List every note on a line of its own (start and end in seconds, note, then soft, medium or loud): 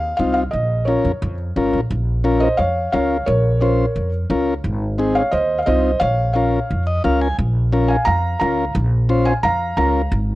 0.00 0.12 D#2 medium
0.00 0.15 F5 loud
0.17 0.47 C2 medium
0.17 0.43 C4 medium
0.17 0.43 D#4 medium
0.17 0.44 F4 medium
0.17 0.32 F5 medium
0.34 0.39 F5 medium
0.51 0.95 A#1 medium
0.51 0.84 D#5 medium
0.85 1.12 C#4 medium
0.85 1.12 F4 medium
0.85 1.12 A#4 medium
0.85 1.34 C#5 medium
1.05 1.12 F2 medium
1.22 1.49 F2 loud
1.56 1.72 G#1 medium
1.56 1.80 C#4 medium
1.56 1.81 F4 medium
1.56 1.81 A#4 medium
1.73 1.89 A#1 medium
1.90 2.45 A#1 loud
2.24 2.48 C#4 medium
2.24 2.49 F4 medium
2.24 2.49 A#4 loud
2.40 2.58 C5 medium
2.40 2.57 D#5 medium
2.57 2.86 F2 medium
2.57 2.91 C#5 medium
2.57 2.90 F5 loud
2.92 3.21 C#2 medium
2.92 3.17 C#4 medium
2.92 3.17 F4 medium
2.92 3.18 A#4 medium
2.92 3.25 C#5 medium
2.92 3.25 F5 medium
3.26 3.82 A#1 loud
3.26 3.59 A#4 medium
3.26 3.59 C#5 medium
3.61 3.85 C#4 medium
3.61 3.86 F4 medium
3.61 4.10 A#4 medium
3.61 3.86 C5 medium
3.61 4.09 C#5 medium
3.96 4.23 F2 medium
4.30 4.57 C#2 medium
4.30 4.54 C#4 medium
4.30 4.54 F4 medium
4.30 4.54 A#4 medium
4.64 5.19 G#1 medium
4.98 5.22 C4 medium
4.98 5.23 D#4 medium
4.98 5.23 G#4 medium
5.15 5.32 C#5 medium
5.15 5.31 F5 medium
5.31 5.60 D#2 medium
5.31 5.58 C5 medium
5.31 5.57 D#5 medium
5.59 5.66 F5 medium
5.66 5.94 C2 medium
5.66 5.91 C4 medium
5.66 5.91 D#4 medium
5.66 5.92 F4 medium
5.66 5.99 C5 medium
5.66 5.98 D#5 medium
6.00 6.56 A#1 loud
6.00 6.33 C#5 medium
6.00 6.32 F5 loud
6.33 6.59 C#4 medium
6.33 6.60 F4 medium
6.33 6.60 A#4 medium
6.33 6.83 C#5 medium
6.33 6.82 F5 medium
6.71 6.98 F2 medium
6.87 7.03 D#5 medium
7.04 7.32 C#2 medium
7.04 7.28 C#4 medium
7.04 7.28 F4 medium
7.04 7.28 A#4 medium
7.04 7.20 F5 medium
7.21 7.37 G#5 medium
7.39 7.93 A#1 loud
7.72 7.96 C#4 medium
7.72 7.97 F4 medium
7.72 7.97 A#4 medium
7.88 8.06 F5 medium
7.88 8.05 G#5 medium
8.05 8.34 F2 medium
8.05 8.39 F5 medium
8.05 8.38 A#5 loud
8.40 8.68 C#2 medium
8.40 8.65 C#4 medium
8.40 8.65 F4 medium
8.40 8.65 A#4 medium
8.40 8.73 F5 medium
8.40 8.72 A#5 medium
8.75 9.30 A#1 loud
9.09 9.33 C#4 medium
9.09 9.33 F4 medium
9.09 9.34 C5 medium
9.25 9.32 F5 medium
9.25 9.30 G#5 medium
9.43 9.71 F2 medium
9.43 9.76 F5 medium
9.43 9.75 A#5 loud
9.77 10.05 C#2 medium
9.77 10.02 C#4 medium
9.77 10.02 F4 medium
9.77 10.02 A#4 medium
9.77 10.10 F5 medium
9.77 10.09 A#5 medium
10.12 10.35 G#1 loud